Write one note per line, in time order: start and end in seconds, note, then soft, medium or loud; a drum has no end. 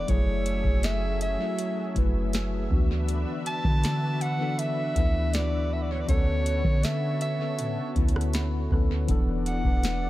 0.00 0.11 E3 medium
0.00 2.67 A3 medium
0.00 0.10 B3 medium
0.00 0.11 D4 medium
0.00 0.10 A4 medium
0.00 0.11 D5 medium
0.07 0.63 F#1 loud
0.07 1.02 F#3 loud
0.07 2.68 F#3 medium
0.07 0.15 G#3 medium
0.07 2.68 C#4 medium
0.07 1.04 E4 medium
0.07 2.69 G#4 medium
0.07 1.04 G#4 loud
0.07 0.86 C#5 loud
0.07 6.05 E5 medium
0.07 kick loud
0.07 closed hi-hat medium
0.14 1.06 A3 medium
0.46 closed hi-hat medium
0.64 1.36 F#1 loud
0.64 kick medium
0.83 1.21 E5 medium
0.83 snare loud
0.83 closed hi-hat medium
1.21 1.92 E5 medium
1.21 closed hi-hat medium
1.38 1.80 F#3 medium
1.38 1.80 A3 medium
1.38 1.81 E4 medium
1.38 1.81 F#4 medium
1.59 closed hi-hat medium
1.94 2.68 F#1 loud
1.94 2.49 F#3 medium
1.94 2.50 A3 medium
1.94 2.51 E4 medium
1.94 2.51 B4 medium
1.94 kick loud
1.94 closed hi-hat medium
2.33 snare loud
2.33 closed hi-hat medium
2.69 3.25 D2 loud
2.69 9.05 D3 medium
2.69 3.45 E3 medium
2.69 3.46 B3 medium
2.69 6.05 D4 medium
2.69 3.46 D4 medium
2.69 10.10 F#4 medium
2.69 3.47 F#4 loud
2.69 6.05 B4 medium
2.69 kick loud
3.09 closed hi-hat medium
3.46 4.23 A5 loud
3.46 closed hi-hat medium
3.63 4.92 D3 loud
3.63 4.18 E3 medium
3.63 4.19 B3 medium
3.63 4.19 D4 medium
3.63 4.20 F#4 medium
3.63 kick medium
3.84 snare loud
3.84 closed hi-hat medium
4.21 4.60 F#5 loud
4.21 closed hi-hat medium
4.38 4.80 E3 medium
4.38 4.80 B3 medium
4.38 4.81 D4 medium
4.38 4.81 A4 medium
4.59 5.36 E5 loud
4.59 closed hi-hat medium
4.95 6.04 D2 loud
4.95 5.76 E3 medium
4.95 5.77 B3 medium
4.95 5.78 D4 medium
4.95 5.78 E4 medium
4.95 kick loud
4.95 closed hi-hat medium
5.33 5.74 D5 medium
5.33 snare loud
5.33 closed hi-hat medium
5.73 5.83 E5 medium
5.82 5.92 D5 medium
5.91 6.02 C#5 medium
6.00 6.08 D5 medium
6.07 6.63 D2 loud
6.07 7.03 D3 loud
6.07 7.03 B3 medium
6.07 9.05 B3 medium
6.07 7.04 C#4 loud
6.07 9.05 A4 medium
6.07 7.04 A4 loud
6.07 9.05 C#5 medium
6.07 6.85 C#5 loud
6.07 kick loud
6.07 closed hi-hat medium
6.46 closed hi-hat medium
6.64 7.61 D3 loud
6.64 kick loud
6.83 7.21 E5 loud
6.83 snare loud
6.83 closed hi-hat medium
7.21 7.92 E5 medium
7.21 closed hi-hat medium
7.38 7.80 D3 medium
7.38 7.80 B3 medium
7.38 7.81 C#4 medium
7.38 7.81 A4 medium
7.59 7.80 A2 loud
7.59 closed hi-hat medium
7.78 7.95 D3 medium
7.94 8.68 D2 loud
7.94 8.49 D3 medium
7.94 8.50 B3 medium
7.94 8.51 C#4 medium
7.94 8.51 E4 medium
7.94 kick loud
7.94 closed hi-hat soft
8.08 closed hi-hat medium
8.16 cross-stick loud
8.21 closed hi-hat medium
8.33 8.69 B5 medium
8.33 snare loud
8.33 closed hi-hat medium
8.70 9.07 D2 loud
8.70 8.97 D3 medium
8.70 8.98 B3 medium
8.70 8.99 C#4 medium
8.70 8.99 A4 medium
8.70 9.06 B4 medium
8.70 kick loud
9.07 9.63 E1 loud
9.07 9.48 E3 loud
9.07 10.10 E3 medium
9.07 10.10 B3 medium
9.07 9.49 B3 loud
9.07 9.50 D4 loud
9.07 10.10 A4 medium
9.07 9.50 A4 loud
9.07 10.10 D5 medium
9.07 kick loud
9.07 closed hi-hat medium
9.46 10.10 F#5 medium
9.46 closed hi-hat medium
9.63 10.10 E1 loud
9.63 10.10 E3 medium
9.63 10.10 B3 medium
9.63 10.10 D4 medium
9.63 10.10 B4 medium
9.63 kick loud
9.83 snare loud
9.83 closed hi-hat medium